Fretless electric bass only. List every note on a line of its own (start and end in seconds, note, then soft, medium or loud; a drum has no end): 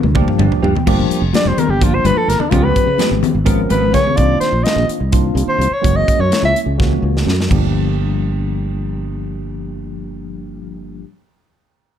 0.03 0.23 D2 medium
0.39 0.49 G1 medium
0.63 0.72 G2 medium
0.73 muted fretless electric bass stroke soft
0.87 1.07 G1 medium
1.10 muted fretless electric bass stroke soft
1.21 1.31 F1 medium
1.45 1.55 F1 medium
1.57 muted fretless electric bass stroke soft
1.68 1.99 G1 medium
2.04 2.14 G1 medium
2.28 2.38 G1 medium
2.53 2.73 C#2 loud
2.87 2.97 C#3 medium
3.11 3.21 G#1 medium
3.35 3.65 G#1 medium
3.71 3.91 G#1 medium
3.93 4.14 C#3 medium
4.18 4.38 C2 medium
4.52 4.63 A#1 medium
4.76 4.86 A#1 medium
4.89 muted fretless electric bass stroke soft
5.00 5.31 C2 medium
5.35 5.46 C2 medium
5.58 5.69 C2 medium
5.84 6.04 F#1 medium
6.08 muted fretless electric bass stroke soft
6.19 6.29 F#2 medium
6.42 6.53 C#2 medium
6.66 6.97 C#2 medium
7.02 7.23 C#2 medium
7.26 7.46 F#2 medium
7.50 11.03 G1 medium